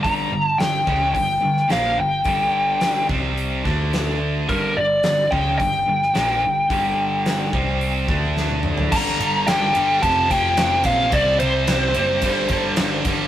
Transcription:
0.03 picked electric bass G1, distorted electric guitar G2 D3 G3, lead electric guitar A#5, kick, open hi-hat
0.31 picked electric bass G1, distorted electric guitar G2 D3
0.45 lead electric guitar A5
0.58 picked electric bass G1, distorted electric guitar G2 D3, lead electric guitar G5, snare, open hi-hat
0.85 picked electric bass C#2, distorted electric guitar C#3 G#3 C#4, kick
1.13 picked electric bass G1, distorted electric guitar G2 D3, lead electric guitar G5, kick, open hi-hat
1.41 picked electric bass G1, distorted electric guitar G2 D3
1.57 snare
1.69 picked electric bass A#1, distorted electric guitar A#2 F3 A#3, lead electric guitar F5, snare, open hi-hat
1.97 picked electric bass G1, distorted electric guitar G2 D3, lead electric guitar G5
2.24 picked electric bass G1, distorted electric guitar G2 D3 G3, kick, open hi-hat
2.81 snare, open hi-hat
3.09 picked electric bass C2, distorted electric guitar C3 G3 C4, kick
3.37 open hi-hat
3.65 picked electric bass D2, distorted electric guitar D3 A3 D4, kick, snare
3.93 snare, open hi-hat
4.47 picked electric bass G1, distorted electric guitar G2 D3 G3, lead electric guitar A#4, kick, open hi-hat
4.76 picked electric bass G1, distorted electric guitar G2 D3, lead electric guitar D5
5.03 picked electric bass G1, distorted electric guitar G2 D3, snare, open hi-hat
5.31 picked electric bass C#2, distorted electric guitar C#3 G#3 C#4, lead electric guitar G5, kick
5.59 picked electric bass G1, distorted electric guitar G2 D3, lead electric guitar G5, kick, open hi-hat
5.86 picked electric bass G1, distorted electric guitar G2 D3
6.02 snare
6.14 picked electric bass A#1, distorted electric guitar A#2 F3 A#3, snare, open hi-hat
6.41 picked electric bass G1, distorted electric guitar G2 D3
6.69 picked electric bass G1, distorted electric guitar G2 D3 G3, kick, open hi-hat
7.26 snare, open hi-hat
7.52 picked electric bass C2, distorted electric guitar C3 G3 C4, kick
7.81 open hi-hat
8.08 picked electric bass D2, distorted electric guitar D3 A3 D4, kick
8.37 snare
8.49 high tom
8.63 mid tom
8.78 floor tom
8.92 picked electric bass G1, distorted electric guitar G2 D3 G3, lead electric guitar A#5, kick, crash
9.19 picked electric bass G1, distorted electric guitar G2 D3 G3, ride
9.47 picked electric bass G1, distorted electric guitar G2 D3 G3, lead electric guitar G5, snare, ride
9.74 picked electric bass G1, distorted electric guitar G2 D3 G3, ride
10.02 picked electric bass F1, distorted electric guitar F2 C3 F3, lead electric guitar A5, kick, ride
10.30 picked electric bass F1, distorted electric guitar F2 C3 F3, lead electric guitar G5, kick, ride
10.57 picked electric bass F1, distorted electric guitar F2 C3 F3, snare, ride
10.84 picked electric bass A#1, distorted electric guitar F2 C3 F3, lead electric guitar F5, kick, ride
11.12 picked electric bass C2, distorted electric guitar C3 G3 C4, lead electric guitar D5, kick, ride
11.39 picked electric bass C2, distorted electric guitar C3 G3 C4, lead electric guitar C5, ride
11.67 picked electric bass C2, distorted electric guitar C3 G3 C4, snare, ride
11.94 picked electric bass F#1, distorted electric guitar C3 G3 C4, ride
12.00 distorted electric guitar C3
12.22 picked electric bass G1, distorted electric guitar G2 D3 G3, kick, ride
12.49 picked electric bass G1, distorted electric guitar G2 D3 G3, kick, ride
12.76 picked electric bass G1, distorted electric guitar G2 D3 G3, snare, ride
13.05 picked electric bass G1, distorted electric guitar G2 D3 G3, kick, ride

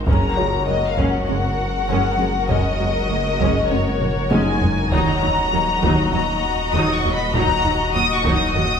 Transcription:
Already playing: felt piano A#4
0.07 double bass section F#1, detuned saw bass F#1, cello section F#2, synth arpeggio sound F#3, viola section G#3 C#4, violin section F#4 A#4 A#5, taiko
0.37 double bass section F#1, cello section F#2, viola section G#3, synth arpeggio sound F#4, felt piano C#5
0.68 double bass section F#1, cello section F#2, viola section G#3 A#3, synth arpeggio sound A#3, violin section D#5
0.89 violin section F5
0.97 double bass section F#1, cello section F#2, synth arpeggio sound F#3, viola section G#3 C#4, taiko
1.09 violin section F#5
1.28 double bass section F#1, cello section F#2, viola section G#3, synth arpeggio sound C#4, violin section F#5
1.89 double bass section F#1, cello section F#2, synth arpeggio sound F#3, viola section G#3 C#4
2.19 double bass section F#1, cello section F#2, viola section G#3, synth arpeggio sound C#4
2.49 double bass section F#1, cello section F#2, synth arpeggio sound F#3, viola section G#3 C#4, violin section D#5, taiko
2.79 double bass section F#1, cello section F#2, viola section G#3, synth arpeggio sound F#4
3.10 double bass section F#1, cello section F#2, viola section G#3 A#3, synth arpeggio sound A#3
3.40 double bass section F#1, cello section F#2, synth arpeggio sound F#3, viola section G#3 C#4, taiko
3.70 double bass section F#1, cello section F#2, viola section G#3, synth arpeggio sound C#4, violin section C#5
4.01 taiko low-mid
4.30 double bass section F#1, cello section F#2, synth arpeggio sound F#3, viola section G#3 C#4, felt piano D#4 D#5, violin section G#5, taiko high
4.61 double bass section F#1, cello section F#2, viola section G#3, synth arpeggio sound C#4, taiko low
4.91 detuned saw bass D#1, double bass section D#2, cello section D#2, synth arpeggio sound D#3, viola section F#3 D#4, violin section F#4 D#5 A#5, felt piano C#5, taiko
5.22 double bass section D#2, cello section D#2, viola section F#3, synth arpeggio sound D#4
5.52 double bass section D#2, cello section D#2, synth arpeggio sound F#3, viola section F#3 A#3
5.82 cello section D#2, double bass section D#2, synth arpeggio sound D#3, viola section F#3 D#4, taiko
6.13 double bass section D#2, cello section D#2, viola section F#3, synth arpeggio sound A#3, violin section A#5
6.73 double bass section D#2, cello section D#2, synth arpeggio sound D#3, viola section F#3 D#4, violin section D#6
6.95 violin section C#6
7.03 cello section D#2, double bass section D#2, viola section F#3, synth arpeggio sound A#3
7.14 violin section B5
7.33 double bass section D#2, cello section D#2, synth arpeggio sound D#3, viola section F#3 D#4, violin section A#5, taiko
7.64 double bass section D#2, cello section D#2, viola section F#3, synth arpeggio sound D#4
7.94 double bass section D#2, cello section D#2, synth arpeggio sound F#3, viola section F#3 A#3, violin section D#6
8.15 violin section C#6
8.25 double bass section D#2, cello section D#2, synth arpeggio sound D#3, viola section F#3 D#4, taiko
8.36 violin section D#6
8.54 double bass section D#2, cello section D#2, viola section F#3, synth arpeggio sound A#3, violin section D#6

